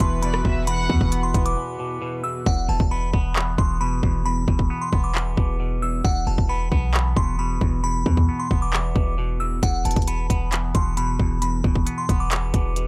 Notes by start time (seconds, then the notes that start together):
Already playing: E2 E3 B3 E4 F#4 B4
0.00 E1 B2 C6, kick, closed hi-hat
0.22 B2 D5 B5, closed hi-hat
0.34 cross-stick
0.45 E1 E2 E5, kick
0.67 E2 F#5 B5, closed hi-hat
0.90 E2 B2, kick
1.01 E1, kick
1.12 B3, closed hi-hat
1.23 C6
1.34 E1 B3, kick, closed hi-hat
1.46 D6, closed hi-hat
1.57 E2
1.79 B2
2.02 B2
2.24 E2 E6
2.46 E1 E2 F#5, kick
2.69 E1 B2 A5
2.80 E1, kick
2.91 B3 B5
3.13 E1 B3, kick
3.36 E2, clap
3.58 E1 B2 C6, kick
3.81 B2 B5
4.03 E1 E2, kick
4.26 E2 B5
4.48 E1 B2, kick
4.59 kick
4.70 B3
4.81 C6
4.93 E1 B3, kick
5.04 D6
5.15 E2, clap
5.37 E1 B2, kick
5.60 B2
5.82 E2 E6
6.05 E1 E2 F#5, kick
6.27 E1 B2 A5
6.38 E1, kick
6.49 B3 B5
6.72 B1 B3, kick
6.94 E2, clap
7.16 E1 B2 C6, kick
7.39 B2 B5
7.61 E1 E2, kick
7.84 E2 B5
8.06 E2 B2, kick
8.17 kick
8.29 B3
8.39 C6
8.51 E1 B3, kick
8.62 D6
8.73 E2, clap
8.96 E1 B2, kick
9.18 B2
9.40 E2 E6
9.63 E1 E2 F#5, kick, closed hi-hat
9.85 E1 B2 A5, closed hi-hat
9.91 closed hi-hat
9.96 E1, kick, closed hi-hat
10.02 closed hi-hat
10.07 B3 B5, closed hi-hat
10.30 E1 B3, kick, closed hi-hat
10.52 E2, clap, closed hi-hat
10.75 E1 B2 C6, kick, closed hi-hat
10.97 B2 B5, closed hi-hat
11.20 E1 E2, kick
11.42 E2 B5, closed hi-hat
11.64 E1 B2, kick
11.75 kick
11.87 B3, closed hi-hat
11.98 C6
12.09 E1 B3, kick, closed hi-hat
12.20 D6
12.31 E2, clap, closed hi-hat
12.54 E1 B2, kick, closed hi-hat
12.76 B2, closed hi-hat